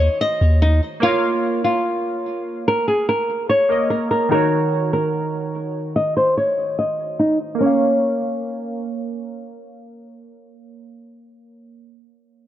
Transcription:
Already playing: D#3 D#4 F#4 C#5
0.21 D#5
0.41 D#2
0.62 D#4
1.00 A#3 F4 A#4 C#5
1.06 F5
1.64 F4
2.68 A#4
2.88 G#4
3.09 A#4
3.49 C#5
3.69 A#3 A#4 C#5 D#5
3.90 A#4
4.11 A#4
4.29 D#3 D#4 F#4 A#4
4.34 C#5
4.93 A#4
5.96 D#5
6.17 C5
6.37 C#5
6.79 D#5
7.19 D#4
7.55 A#3 A#4
7.61 C#4 C#5
7.66 F5

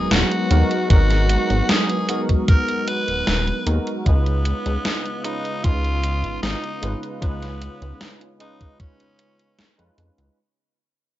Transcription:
Already playing: F#3 G#3 B3 D#4 F#4 G#4 A#4 A#5
0.11 D#1 F#4, snare, closed hi-hat
0.32 closed hi-hat
0.50 D#2 G#3 B3 D#4 F#4 A#4, closed hi-hat
0.71 closed hi-hat
0.89 G#1 G#3 B3 D#4 F#4 A#4, kick, closed hi-hat
1.11 snare, closed hi-hat
1.29 closed hi-hat
1.50 G#1, closed hi-hat
1.69 G#4, snare, closed hi-hat
1.90 closed hi-hat
2.08 G#3 B3 D#4 F#4 A#4, closed hi-hat
2.29 kick, closed hi-hat
2.48 A#4, kick, closed hi-hat
2.69 closed hi-hat
2.88 B4, closed hi-hat
3.08 D#1, closed hi-hat
3.27 D#1, snare, closed hi-hat
3.47 closed hi-hat
3.66 D#2 G#3 B3 D#4 F#4 A#4, closed hi-hat
3.87 closed hi-hat
4.05 C#2 C#3 G#3 B3 C#4 D#4 F4 B4, kick, closed hi-hat
4.26 closed hi-hat
4.45 closed hi-hat
4.66 C#2, closed hi-hat
4.85 snare, closed hi-hat
5.05 closed hi-hat
5.24 G#3 C#4 D#4 F4 B4, closed hi-hat
5.45 closed hi-hat
5.64 C#2 F4, kick, closed hi-hat
5.84 closed hi-hat
6.03 closed hi-hat
6.24 G#1, closed hi-hat
6.42 G#1 D#4, snare, closed hi-hat
6.64 closed hi-hat
6.82 G#1 G#3 C#4 D#4 F4 B4, closed hi-hat
7.03 closed hi-hat
7.20 C#2 G#3 B3 C#4 D#4 F4 B4, kick, closed hi-hat
7.42 snare, closed hi-hat
7.62 closed hi-hat
7.82 C#2, closed hi-hat
8.01 snare, closed hi-hat
8.21 closed hi-hat
8.39 G#3 C#4 D#4 F4 B4, closed hi-hat
8.61 kick, closed hi-hat
8.80 C#4, kick, closed hi-hat
9.00 closed hi-hat
9.19 closed hi-hat
9.40 closed hi-hat
9.59 snare, closed hi-hat
9.78 F2 G#3 C#4 D#4 F4 B4, closed hi-hat
9.98 F2, closed hi-hat
10.18 C#2, closed hi-hat

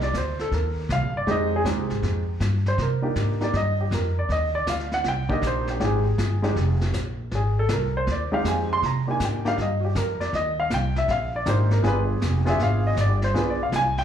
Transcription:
Already playing: C2
0.01 D5, snare
0.13 D2, kick, snare, hi-hat pedal
0.17 C5
0.39 A4, snare
0.51 D#2 A#4, brush sweep, kick, snare
0.89 C2 F5, kick, snare, hi-hat pedal
1.01 A#1
1.13 G1 D5
1.27 F2 G#3 C4 D#4 G4 D#5, brush sweep, kick, snare
1.56 G#4
1.64 D#2 G#3 C4 D#4 G4, kick, snare, hi-hat pedal
1.77 C2
1.90 G#1, snare
2.02 F2, brush sweep, kick, snare
2.40 G2, kick, snare, hi-hat pedal
2.66 C5, snare
2.78 C3, brush sweep, kick, snare
2.82 A#4
3.02 A#3 D4 D#4 G4
3.16 G#2, kick, snare, hi-hat pedal
3.41 A#3 D4 D#4 G4 D5, snare
3.53 G2 D#5, brush sweep, kick, snare
3.81 G4
3.91 F2 A#4, kick, snare, hi-hat pedal
4.19 D5
4.29 D#2 D#5, brush sweep, kick, snare
4.55 D5
4.67 D2 F5, kick, snare, hi-hat pedal
4.79 snare
4.91 F#5, snare
5.04 C2, brush sweep, kick, snare
5.08 G5
5.29 A#3 D4 D#4 G4 D#5, kick
5.42 A#1, kick, snare, hi-hat pedal
5.47 C5
5.67 G4, snare
5.80 G#1 G#3 C4 D#4 G4, brush sweep, kick, snare
5.85 G#4
6.18 G1, kick, snare, hi-hat pedal
6.42 G#3 C4 D#4 G4, snare
6.56 F1, brush sweep, kick, snare
6.81 snare
6.93 A#1, kick, snare, hi-hat pedal
7.31 G#1 G#4, brush sweep, kick, snare
7.59 A4
7.69 C2, kick, snare, hi-hat pedal
7.73 A#4
7.97 C5
8.07 D#2, brush sweep, kick, snare
8.12 D5
8.32 G#3 C4 D#4 G4 F5
8.44 F2 G#5, kick, snare, hi-hat pedal
8.73 C6
8.82 C3 A#5, brush sweep, kick, snare
9.07 A#3 D4 D#4 G4 G#5
9.20 G#2, kick, snare, hi-hat pedal
9.24 G5
9.45 A#3 D4 D#4 G4 F5, snare
9.57 G2, brush sweep, kick, snare
9.62 D#5
9.80 F#4
9.85 G4
9.95 F2 A#4, kick, snare, hi-hat pedal
10.20 D5, snare
10.33 D#2 D#5, brush sweep, kick, snare
10.60 F5
10.70 C2 G5, kick, snare, hi-hat pedal
10.96 E5, snare
11.08 A#1 F5, brush sweep, kick, snare
11.36 D5
11.46 G#1 A#3 D4 D#4 G4 C5, kick, snare, hi-hat pedal
11.71 A#4, snare
11.82 G1 B3 D4 F4 G#4, brush sweep, kick, snare
11.87 B4
12.21 F1, kick, snare, hi-hat pedal
12.45 B3 D4 F4 G#4, snare
12.50 E5
12.59 G#1 F5, brush sweep, kick, snare
12.87 D#5
12.96 G1, kick, snare, hi-hat pedal
13.01 D5
13.22 C5, snare
13.34 B1 B3 D4 F4 G#4 B4, brush sweep, kick, snare
13.50 D5
13.63 F5
13.72 C2 G#5, kick, snare, hi-hat pedal
13.98 G5, snare

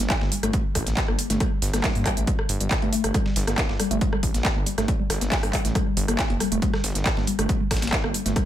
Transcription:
0.10 G3, kick, cross-stick, snare, clap, closed hi-hat
0.21 G1 A#3, snare
0.32 G3, closed hi-hat, open hi-hat
0.43 G1 A3, cross-stick, closed hi-hat
0.53 G3, kick, closed hi-hat
0.75 A1, kick, cross-stick, closed hi-hat, open hi-hat
0.86 A1 A#3, snare, closed hi-hat
0.97 G3, kick, snare, clap, closed hi-hat
1.08 G1 A#3, cross-stick
1.19 G3, closed hi-hat, open hi-hat
1.30 G1 A3, snare, closed hi-hat
1.40 G3, kick, cross-stick, closed hi-hat
1.62 G1, snare, closed hi-hat, open hi-hat
1.73 G1 A#3, cross-stick, snare, closed hi-hat
1.84 G3, kick, snare, clap, closed hi-hat, open hi-hat
1.95 G2 A#3, open hi-hat
2.06 G3, kick, cross-stick, clap, closed hi-hat, open hi-hat
2.17 A1 A3, closed hi-hat
2.27 G3, kick, closed hi-hat
2.39 cross-stick
2.49 G1, closed hi-hat, open hi-hat
2.60 G1 G3, closed hi-hat
2.71 kick, cross-stick, snare, clap, closed hi-hat
2.82 G2 A3, closed hi-hat
2.93 A3, closed hi-hat, open hi-hat
3.04 G1 A3, cross-stick, closed hi-hat
3.14 G3, kick, cross-stick, closed hi-hat
3.26 G3, snare
3.36 G1, snare, closed hi-hat, open hi-hat
3.47 G1 A#3, cross-stick, snare, closed hi-hat
3.58 kick, snare, clap, closed hi-hat
3.69 G1 A#3, snare
3.80 G3, cross-stick, closed hi-hat, open hi-hat
3.91 G1 A3, closed hi-hat
4.01 G3, kick, closed hi-hat
4.13 G3, cross-stick
4.23 A1, kick, closed hi-hat, open hi-hat
4.34 A1 A#3, snare, closed hi-hat
4.45 kick, cross-stick, snare, clap, closed hi-hat
4.56 G1 A#3
4.66 G3, closed hi-hat, open hi-hat
4.78 G1 A3, cross-stick, snare, closed hi-hat
4.88 G3, kick, closed hi-hat
5.00 G3
5.10 G1, cross-stick, snare, closed hi-hat, open hi-hat
5.21 G1 A#3, snare, closed hi-hat
5.32 kick, snare, clap, closed hi-hat, open hi-hat
5.43 G2 A#3, cross-stick, open hi-hat
5.53 G3, kick, clap, closed hi-hat, open hi-hat
5.65 A1 A3, snare, closed hi-hat
5.75 G3, kick, cross-stick, closed hi-hat
5.87 G3
5.97 G1, closed hi-hat, open hi-hat
6.08 G1 A#3, cross-stick, closed hi-hat
6.19 kick, snare, clap, closed hi-hat
6.30 F1 A#3, closed hi-hat
6.40 G3, cross-stick, closed hi-hat, open hi-hat
6.52 F1 A3, closed hi-hat
6.62 G3, kick, closed hi-hat
6.74 G3, cross-stick, snare
6.84 G1, snare, closed hi-hat, open hi-hat
6.95 G1 A#3, snare, closed hi-hat
7.06 kick, cross-stick, snare, clap, closed hi-hat
7.17 G1 A#3, snare
7.27 G3, closed hi-hat, open hi-hat
7.39 G1 A3, cross-stick, closed hi-hat
7.49 G3, kick, closed hi-hat
7.60 G3
7.71 A1, kick, cross-stick, snare, closed hi-hat, open hi-hat
7.77 snare, closed hi-hat
7.82 A1 A#3, snare, closed hi-hat
7.87 snare, closed hi-hat
7.93 kick, snare, clap, closed hi-hat
8.04 G1 A#3, cross-stick
8.14 G3, closed hi-hat, open hi-hat
8.26 G1 A3, snare, closed hi-hat
8.36 G3, kick, cross-stick, closed hi-hat

